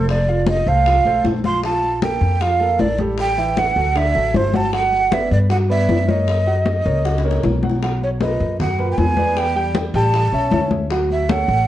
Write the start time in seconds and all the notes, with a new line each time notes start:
Already playing: F1 A3 A4 C5
0.09 D5, high bongo, high conga
0.28 F3 F4 F5, high bongo, high conga
0.47 D#5, high bongo, high conga
0.66 C2 A3 A4 C5 F5, high conga
0.86 F3 F4 F5, high bongo, high conga
1.05 B1 A3 A4 C5, high bongo, high conga
1.24 A#1, high bongo, low bongo, high conga
1.44 F3 F4 F5 C6, high bongo, high conga
1.63 F3 F4 F5 A5, high bongo, high conga
1.83 high bongo, high conga
2.02 A#3 A4 A#4 G5, high bongo, high conga
2.21 F2, high conga
2.41 F3 F4 F5, high bongo, high conga
2.60 A#3 A4 A#4, high bongo, high conga
2.79 A1 D5, high bongo, low bongo, high conga
2.98 G3 G4 A4, high bongo, high conga
3.18 G5, high bongo, high conga
3.37 E3 E4 E5, high bongo, high conga
3.57 F#5, high bongo, high conga
3.76 D2 F#3 F#4 A4, high conga
3.95 D3 D4 D5 E5, high bongo, high conga
4.14 A1 F#3 F#4 A4, high bongo, high conga
4.34 G1 C5, high bongo, low bongo, high conga
4.53 F#3 F#4 F#5 A5, high bongo, high conga
4.73 F#3 F#4 F#5, high bongo, high conga
4.92 high bongo, high conga
5.11 B3 B4 D5 E5, high bongo, high conga
5.31 G2 D5, high conga
5.49 F#3 F#4 F#5, high bongo, high conga
5.69 B3 B4 D5 E5, high bongo, high conga
5.89 F#2, high bongo, low bongo, high conga
6.07 A#3 A#4 C#5 D#5, high bongo, high conga
6.28 high bongo, high conga
6.46 F#3 F#4 F#5, high bongo, high conga
6.66 high bongo, high conga
6.85 C#2 A#3 A#4 C#5, high conga
7.05 F#3 F#4 F#5, high bongo, high conga
7.18 high bongo
7.24 A#3 A#4 C#5, high conga
7.31 high bongo
7.43 B1, low bongo, high conga
7.63 F#3 F#4 F#5, high conga
7.69 low bongo
7.82 F#3 F#4 F#5, high bongo, high conga
8.01 C#5, high bongo, high conga
8.20 A#2 A#4 B4 D#5, high bongo, high conga
8.40 F#2, high conga
8.60 F#3 F#4 F#5, high bongo, high conga, low conga
8.79 A#2 A#4 B4, high bongo, high conga
8.92 G5
8.98 E2 G#5, high bongo, low bongo, high conga
9.17 B3 B4 D5, high bongo, high conga
9.36 G5, high bongo, high conga
9.56 G3 G4 G5, high bongo, high conga
9.74 high bongo, high conga
9.94 A1 G3 G4 G5 A5, high conga
10.13 high bongo, high conga
10.32 B1 C#4 C#5 E5, high bongo, high conga
10.51 D2 C#4 C#5 E5, high bongo, low bongo, high conga
10.71 high bongo, high conga
10.90 F#3 F#4 F#5, high bongo, high conga
11.09 E5, high bongo, high conga
11.29 A3 A4 C#5 F#5, high bongo, high conga
11.48 A1, high conga